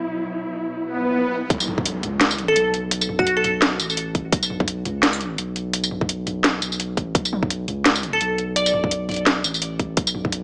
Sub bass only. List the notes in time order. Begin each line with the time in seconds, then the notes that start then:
1.50 B1
2.03 C#2
2.56 B1
3.09 B1
3.80 A1
4.32 B1
4.86 C#2
5.38 B1
5.91 B1
6.62 B1
7.15 B1
7.68 C#2
8.21 B1
8.74 B1
9.44 A1
9.97 B1